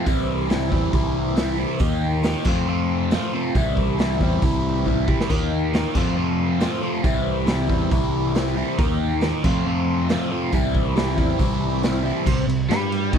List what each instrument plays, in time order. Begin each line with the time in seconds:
0.05 fingered electric bass C2, overdriven electric guitar C3 E3 G3 C4 E4, kick, open hi-hat
0.49 overdriven electric guitar C3 E3 G3 C4 E4, snare, open hi-hat
0.70 fingered electric bass E2, overdriven electric guitar C3 E3 G3 C4 E4, kick
0.92 fingered electric bass C2, overdriven electric guitar C3 E3 G3 C4 E4, kick, open hi-hat
1.36 overdriven electric guitar C3 E3 G3 C4 E4, snare, open hi-hat
1.57 overdriven electric guitar C3 E3 G3 C4 E4
1.79 fingered electric bass D#2, overdriven electric guitar D#3 A#3 D#4 G4, kick, open hi-hat
2.23 overdriven electric guitar D#3 A#3 D#4 G4, snare, open hi-hat
2.45 fingered electric bass F2, overdriven electric guitar F2 C3 F3 A3 C4 F4, kick, crash
2.67 overdriven electric guitar F2 C3 F3 A3 C4 F4
3.11 overdriven electric guitar F2 C3 F3 A3 C4 F4, snare, open hi-hat
3.32 overdriven electric guitar F2 C3 F3 A3 C4 F4
3.55 fingered electric bass C2, overdriven electric guitar C3 E3 G3 C4 E4, kick, open hi-hat
3.77 kick
3.98 overdriven electric guitar C3 E3 G3 C4 E4, snare, open hi-hat
4.21 fingered electric bass E2, overdriven electric guitar C3 E3 G3 C4 E4, kick
4.42 fingered electric bass C2, overdriven electric guitar C3 E3 G3 C4 E4, kick, open hi-hat
4.86 overdriven electric guitar C3 E3 G3 C4 E4, kick
5.07 overdriven electric guitar C3 E3 G3 C4 E4, kick
5.21 snare
5.29 fingered electric bass D#2, overdriven electric guitar D#3 A#3 D#4 G4, kick, crash
5.73 overdriven electric guitar D#3 A#3 D#4 G4, snare, open hi-hat
5.94 overdriven electric guitar F2 C3 F3 A3 C4 F4, fingered electric bass F2, kick, crash
6.16 overdriven electric guitar F2 C3 F3 A3 C4 F4
6.59 overdriven electric guitar F2 C3 F3 A3 C4 F4, snare, open hi-hat
6.72 snare
6.81 overdriven electric guitar F2 C3 F3 A3 C4 F4
7.03 fingered electric bass C2, overdriven electric guitar C3 E3 G3 C4 E4, kick, open hi-hat
7.46 overdriven electric guitar C3 E3 G3 C4 E4, snare, open hi-hat
7.68 fingered electric bass E2, overdriven electric guitar C3 E3 G3 C4 E4, kick
7.90 fingered electric bass C2, overdriven electric guitar C3 E3 G3 C4 E4, kick, open hi-hat
8.34 overdriven electric guitar C3 E3 G3 C4 E4, snare, open hi-hat
8.47 snare
8.55 overdriven electric guitar C3 E3 G3 C4 E4
8.78 fingered electric bass D#2, overdriven electric guitar D#3 A#3 D#4 G4, kick, open hi-hat
9.21 overdriven electric guitar D#3 A#3 D#4 G4, snare, open hi-hat
9.43 overdriven electric guitar F2 C3 F3 A3 C4 F4, fingered electric bass F2, kick, crash
9.65 overdriven electric guitar F2 C3 F3 A3 C4 F4
10.08 overdriven electric guitar F2 C3 F3 A3 C4 F4, snare, open hi-hat
10.22 snare
10.30 overdriven electric guitar F2 C3 F3 A3 C4 F4
10.52 fingered electric bass C2, overdriven electric guitar C3 E3 G3 C4 E4, kick, open hi-hat
10.75 kick
10.95 overdriven electric guitar C3 E3 G3 C4 E4, snare, open hi-hat
11.17 fingered electric bass E2, overdriven electric guitar C3 E3 G3 C4 E4, kick
11.38 fingered electric bass C2, overdriven electric guitar C3 E3 G3 C4 E4, kick, open hi-hat
11.82 overdriven electric guitar C3 E3 G3 C4 E4, snare, open hi-hat
12.03 overdriven electric guitar C3 E3 G3 C4 E4
12.25 fingered electric bass C2, overdriven electric guitar C3, kick, crash
12.47 fingered electric bass C2, overdriven electric guitar C3, ride
12.69 fingered electric bass G2, overdriven electric guitar G3, snare, ride
12.92 ride
13.12 fingered electric bass D#2, overdriven electric guitar D#3, kick, ride